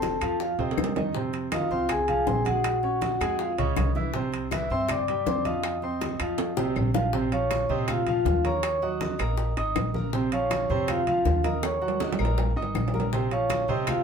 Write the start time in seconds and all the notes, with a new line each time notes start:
Already playing: F1 C4 A4 C5 A5 C6
0.02 high bongo, high conga, high timbale, low timbale
0.21 F2 F3 F4 F5, high bongo, high conga, high timbale, claves
0.40 F4 F5, high bongo, high conga
0.59 D#2 C3 C4 C5 D#5 D#6, high conga, high timbale
0.71 high timbale
0.77 F2, high bongo, low bongo, high conga, claves
0.84 low timbale
0.96 D#3 D#4 D#5, high bongo, high conga, low timbale
1.15 C3 C4 C5, high bongo, high conga
1.33 high bongo, high conga, high timbale
1.52 D#3 D#4 F4 D#5 F5, high bongo, high conga, high timbale, low timbale, claves
1.71 C2 C4 F4 C5 F5 C6, high bongo, high conga
1.89 G#4 G#5, high bongo, high conga, low conga, high timbale, claves
2.08 F3 F4 F5, high conga, low conga, high timbale
2.27 A#1 C4 C5 C6, high bongo, low bongo, high conga, low timbale
2.45 G#3 F#4 G#4 F#5 G#5, high bongo, high conga, high timbale
2.64 high bongo, high conga, high timbale, claves
2.83 C#4 C#5 C#6, high bongo, high conga
3.01 high bongo, high conga, high timbale, low timbale
3.21 F2 G#3 G#4 G#5, high bongo, high conga, high timbale, claves
3.39 F4 F5, high bongo, high conga
3.58 C#2 C#3 C#4 C#5 D#5 D#6, high conga, high timbale
3.76 C2, high bongo, low bongo, high conga, high timbale, low timbale, claves
3.95 E3 E4 E5, high bongo, high conga
4.14 C3 C4 C5, high bongo, high conga
4.32 high bongo, high conga, high timbale
4.51 E3 E4 E5 E6, high bongo, high conga, high timbale, low timbale, claves
4.70 G2 C4 C5 E5 C6 E6, high bongo, high conga
4.89 D5 D6, high bongo, high conga, low conga, high timbale, claves
5.08 G3 G4 G5, high conga, high timbale
5.26 F2 C4 C5 D5 C6 D6, high bongo, low bongo, high conga, low timbale
5.45 F3 F4 D#5 F5 D#6, high bongo, high conga, high timbale
5.64 high bongo, high conga, high timbale, claves
5.82 C4 C5 C6, high bongo, high conga
6.01 high bongo, high conga, high timbale, low timbale
6.20 F2 F3 F4 F5, high bongo, high conga, high timbale, claves
6.38 high bongo, high conga, high timbale
6.57 C2 C3 C4 C5, high bongo, high conga
6.76 A#1, high conga, low timbale, claves
6.94 F3 F4 F5, low bongo, high conga, low timbale
7.13 C3 C4 C5, high bongo, high conga
7.32 F3 F4 C#5 F5 C#6, high bongo, high conga, high timbale
7.51 high bongo, high conga, high timbale, low timbale, claves
7.69 A#2 C3 C4 C5 D#5 D#6, high bongo, high conga
7.88 F4 F5, high bongo, high conga, low conga, high timbale, claves
8.07 F3 F4 F5, high conga, low conga, high timbale
8.25 D#2, high bongo, low bongo, high conga, low timbale
8.44 A#3 A#4 C#5 A#5 C#6, high bongo, high conga, high timbale
8.63 C#5 C#6, high bongo, high conga, high timbale, claves
8.82 F#3 F#4 D#5 F#5 D#6, high bongo, high conga
9.01 high bongo, high conga, high timbale, low timbale
9.19 A#1 A#3 A#4 A#5, high bongo, high conga, high timbale, claves
9.38 high bongo, high conga
9.57 G#1 D#4 D#5 D#6, high conga, high timbale
9.76 A#1, high bongo, low bongo, high conga, high timbale, low timbale, claves
9.94 A#3 A#4 A#5, high bongo, high conga
10.13 C3 C4 C5, high bongo, high conga
10.32 F3 F4 C#5 F5 C#6, high bongo, high conga, high timbale
10.51 high bongo, high conga, high timbale, low timbale, claves
10.70 F2 C3 C4 C5, high bongo, high conga
10.88 F4 F5, high bongo, high conga, low conga, high timbale, claves
11.07 F3 F4 F5, high conga, low conga, high timbale
11.25 D#2, high bongo, low bongo, high conga, low timbale
11.44 A#3 A#4 D#5 A#5 D#6, high bongo, high conga, high timbale
11.63 C#5 C#6, high bongo, high conga, high timbale, claves
11.82 F#3 F#4 F#5, high bongo, high conga
11.88 low timbale
12.00 D#5 D#6, high bongo, high conga, high timbale
12.13 low timbale
12.19 A#1 A#3 A#4 A#5, high bongo, high conga, claves
12.25 low timbale
12.38 high bongo, high conga, low timbale
12.56 G#1 D#4 D#5 D#6, high conga
12.62 low timbale
12.75 A#1, high bongo, low bongo, high conga, low timbale, claves
12.88 low timbale
12.94 A#3 A#4 A#5, high bongo, high conga
13.00 low timbale
13.13 C3 C4 C5, high bongo, high conga
13.31 F3 F4 C#5 F5 C#6, high bongo, high conga, high timbale
13.50 high bongo, high conga, high timbale, low timbale, claves
13.68 F2 C3 C4 C5 D#5 D#6, high bongo, high conga
13.87 F4 F5, high bongo, high conga, low conga, high timbale, claves